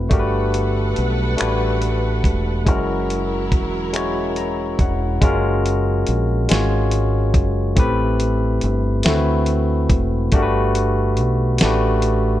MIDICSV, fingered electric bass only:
0, 0, Header, 1, 2, 480
1, 0, Start_track
1, 0, Tempo, 851064
1, 61, Time_signature, 6, 3, 24, 8
1, 6994, End_track
2, 0, Start_track
2, 0, Title_t, "Fingered electric bass"
2, 0, Program_c, 0, 33
2, 67, Note_on_c, 0, 31, 86
2, 522, Note_off_c, 0, 31, 0
2, 555, Note_on_c, 0, 35, 91
2, 765, Note_off_c, 0, 35, 0
2, 798, Note_on_c, 0, 33, 83
2, 1247, Note_off_c, 0, 33, 0
2, 1269, Note_on_c, 0, 28, 84
2, 1510, Note_off_c, 0, 28, 0
2, 1510, Note_on_c, 0, 30, 95
2, 1989, Note_off_c, 0, 30, 0
2, 1989, Note_on_c, 0, 28, 84
2, 2683, Note_off_c, 0, 28, 0
2, 2705, Note_on_c, 0, 28, 85
2, 2921, Note_off_c, 0, 28, 0
2, 2949, Note_on_c, 0, 30, 104
2, 3402, Note_off_c, 0, 30, 0
2, 3432, Note_on_c, 0, 34, 91
2, 3644, Note_off_c, 0, 34, 0
2, 3674, Note_on_c, 0, 32, 97
2, 4147, Note_off_c, 0, 32, 0
2, 4147, Note_on_c, 0, 30, 84
2, 4362, Note_off_c, 0, 30, 0
2, 4385, Note_on_c, 0, 33, 89
2, 4840, Note_off_c, 0, 33, 0
2, 4871, Note_on_c, 0, 31, 92
2, 5084, Note_off_c, 0, 31, 0
2, 5107, Note_on_c, 0, 38, 112
2, 5562, Note_off_c, 0, 38, 0
2, 5587, Note_on_c, 0, 28, 84
2, 5801, Note_off_c, 0, 28, 0
2, 5830, Note_on_c, 0, 31, 96
2, 6319, Note_off_c, 0, 31, 0
2, 6319, Note_on_c, 0, 35, 95
2, 6528, Note_off_c, 0, 35, 0
2, 6559, Note_on_c, 0, 33, 105
2, 6994, Note_off_c, 0, 33, 0
2, 6994, End_track
0, 0, End_of_file